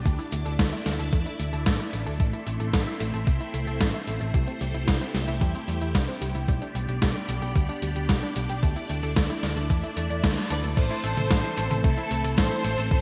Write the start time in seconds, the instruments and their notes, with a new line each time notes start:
Already playing: string machine D4
0.05 picked electric bass D2, string machine A3 E4 D5, synth arpeggio sound A3, kick, closed hi-hat
0.19 synth arpeggio sound E4, closed hi-hat
0.32 picked electric bass D2, synth arpeggio sound A3, closed hi-hat
0.46 picked electric bass D2, synth arpeggio sound A4, closed hi-hat
0.59 picked electric bass D2, synth arpeggio sound A3, kick, snare, closed hi-hat
0.72 synth arpeggio sound E4, closed hi-hat
0.86 picked electric bass D2, synth arpeggio sound A3, snare, closed hi-hat
0.99 picked electric bass D2, synth arpeggio sound A4, closed hi-hat
1.13 picked electric bass E2, synth arpeggio sound A3, kick, closed hi-hat
1.26 synth arpeggio sound E4, closed hi-hat
1.39 picked electric bass D2, synth arpeggio sound A3, closed hi-hat
1.53 picked electric bass D2, synth arpeggio sound A4, closed hi-hat
1.66 picked electric bass A1, synth arpeggio sound A3, kick, snare, closed hi-hat
1.80 synth arpeggio sound E4, closed hi-hat
1.93 picked electric bass A1, synth arpeggio sound A3, closed hi-hat
2.06 picked electric bass D2, synth arpeggio sound A4, closed hi-hat
2.20 picked electric bass A1, synth arpeggio sound A3, string machine C4 E4 C5, kick, closed hi-hat
2.33 synth arpeggio sound E4, closed hi-hat
2.47 picked electric bass A1, synth arpeggio sound A3, closed hi-hat
2.60 picked electric bass A1, synth arpeggio sound A4, closed hi-hat
2.73 picked electric bass A1, synth arpeggio sound A3, kick, snare, closed hi-hat
2.87 synth arpeggio sound E4, closed hi-hat
3.00 picked electric bass A1, synth arpeggio sound A3, closed hi-hat
3.14 picked electric bass A1, synth arpeggio sound A4, closed hi-hat
3.27 picked electric bass C2, synth arpeggio sound A3, kick, closed hi-hat
3.40 synth arpeggio sound E4, closed hi-hat
3.54 picked electric bass C2, synth arpeggio sound A3, closed hi-hat
3.67 picked electric bass C2, synth arpeggio sound A4, closed hi-hat
3.81 picked electric bass A1, synth arpeggio sound A3, kick, snare, closed hi-hat
3.94 synth arpeggio sound E4, closed hi-hat
4.07 picked electric bass A1, synth arpeggio sound A3, closed hi-hat
4.21 picked electric bass A1, synth arpeggio sound A4, closed hi-hat
4.34 picked electric bass C2, synth arpeggio sound G3, string machine E4 G4, kick, closed hi-hat
4.48 synth arpeggio sound C4, closed hi-hat
4.61 picked electric bass C2, synth arpeggio sound G3, closed hi-hat
4.74 picked electric bass C2, synth arpeggio sound E4, closed hi-hat
4.88 picked electric bass C2, synth arpeggio sound G3, kick, snare, closed hi-hat
5.01 synth arpeggio sound C4, closed hi-hat
5.14 picked electric bass C2, synth arpeggio sound G3, snare, closed hi-hat
5.28 picked electric bass C2, synth arpeggio sound E4, closed hi-hat
5.41 picked electric bass E2, synth arpeggio sound G3, kick, closed hi-hat
5.55 synth arpeggio sound C4, closed hi-hat
5.68 picked electric bass E2, synth arpeggio sound G3, closed hi-hat
5.81 picked electric bass E2, synth arpeggio sound E4, closed hi-hat
5.95 picked electric bass C2, synth arpeggio sound G3, kick, snare, closed hi-hat
6.08 synth arpeggio sound C4, closed hi-hat
6.21 picked electric bass C2, synth arpeggio sound G3, closed hi-hat
6.35 picked electric bass C2, synth arpeggio sound E4, closed hi-hat
6.48 picked electric bass B1, synth arpeggio sound G3, string machine B3 D4 G4 D5, kick, closed hi-hat
6.62 synth arpeggio sound D4, closed hi-hat
6.75 picked electric bass B1, synth arpeggio sound G3, closed hi-hat
6.88 picked electric bass B1, synth arpeggio sound G4, closed hi-hat
7.02 picked electric bass B1, synth arpeggio sound G3, kick, snare, closed hi-hat
7.15 synth arpeggio sound D4, closed hi-hat
7.28 picked electric bass B1, synth arpeggio sound G3, closed hi-hat
7.42 picked electric bass B1, synth arpeggio sound G4, closed hi-hat
7.55 picked electric bass D2, synth arpeggio sound G3, kick, closed hi-hat
7.69 synth arpeggio sound D4, closed hi-hat
7.82 picked electric bass D2, synth arpeggio sound G3, closed hi-hat
7.96 picked electric bass D2, synth arpeggio sound G4, closed hi-hat
8.09 picked electric bass B1, synth arpeggio sound G3, kick, snare, closed hi-hat
8.22 synth arpeggio sound D4, closed hi-hat
8.36 picked electric bass B1, synth arpeggio sound G3, closed hi-hat
8.49 picked electric bass B1, synth arpeggio sound G4, closed hi-hat
8.62 picked electric bass D2, string machine A3 E4 D5, synth arpeggio sound A3, kick, closed hi-hat
8.76 synth arpeggio sound E4, closed hi-hat
8.89 picked electric bass D2, synth arpeggio sound A3, closed hi-hat
9.03 picked electric bass D2, synth arpeggio sound A4, closed hi-hat
9.16 picked electric bass D2, synth arpeggio sound A3, kick, snare, closed hi-hat
9.30 synth arpeggio sound E4, closed hi-hat
9.43 picked electric bass D2, synth arpeggio sound A3, snare, closed hi-hat
9.56 picked electric bass D2, synth arpeggio sound A4, closed hi-hat
9.70 picked electric bass E2, synth arpeggio sound A3, kick, closed hi-hat
9.83 synth arpeggio sound E4, closed hi-hat
9.97 picked electric bass E2, synth arpeggio sound A3, closed hi-hat
10.10 picked electric bass E2, synth arpeggio sound D5, closed hi-hat
10.24 picked electric bass D2, synth arpeggio sound A3, kick, snare, closed hi-hat
10.37 synth arpeggio sound D4, closed hi-hat
10.50 picked electric bass D2, synth arpeggio sound A4, violin section B4 D5, closed hi-hat
10.64 picked electric bass D2, synth arpeggio sound A4, closed hi-hat
10.77 picked electric bass A1, string machine E3 A3 C4 A4, synth arpeggio sound A3, violin section A4 C5, kick, closed hi-hat, crash
10.90 synth arpeggio sound E4, closed hi-hat
11.04 picked electric bass A1, synth arpeggio sound A3, closed hi-hat
11.17 picked electric bass A1, synth arpeggio sound A4, closed hi-hat, high tom
11.31 picked electric bass A1, synth arpeggio sound A3, kick, snare, closed hi-hat
11.44 synth arpeggio sound E4, closed hi-hat
11.57 picked electric bass A1, synth arpeggio sound A3, closed hi-hat
11.71 picked electric bass A1, synth arpeggio sound A4, closed hi-hat, high tom
11.84 picked electric bass C2, synth arpeggio sound A3, violin section E4 A4, kick, closed hi-hat
11.97 synth arpeggio sound E4, closed hi-hat
12.11 picked electric bass C2, synth arpeggio sound A3, closed hi-hat
12.24 picked electric bass C2, synth arpeggio sound A4, closed hi-hat
12.38 picked electric bass A1, synth arpeggio sound A3, violin section A4 C5, kick, snare, closed hi-hat
12.51 synth arpeggio sound E4, closed hi-hat
12.64 picked electric bass A1, synth arpeggio sound A3, closed hi-hat
12.78 picked electric bass A1, synth arpeggio sound A4, closed hi-hat
12.91 picked electric bass A1, synth arpeggio sound A3, violin section A4 C5, kick, closed hi-hat